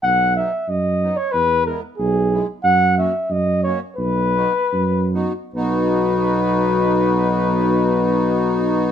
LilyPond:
<<
  \new Staff \with { instrumentName = "Flugelhorn" } { \time 2/4 \key b \major \tempo 4 = 85 fis''8 e''8 dis''8. cis''16 | b'8 ais'8 gis'8. r16 | fis''8 e''8 dis''8 cis''8 | b'4. r8 |
b'2~ | b'2 | }
  \new Staff \with { instrumentName = "Accordion" } { \time 2/4 \key b \major r8 <fis b dis'>8 r8 <fis b dis'>8 | r8 <gis b e'>8 r8 <gis b e'>8 | r8 <ais cis' fis'>8 r8 <ais cis' fis'>8 | r8 <b dis' fis'>8 r8 <b dis' fis'>8 |
<b dis' fis'>2~ | <b dis' fis'>2 | }
  \new Staff \with { instrumentName = "Tuba" } { \clef bass \time 2/4 \key b \major b,,4 fis,4 | e,4 b,,4 | fis,4 fis,4 | b,,4 fis,4 |
b,,2~ | b,,2 | }
>>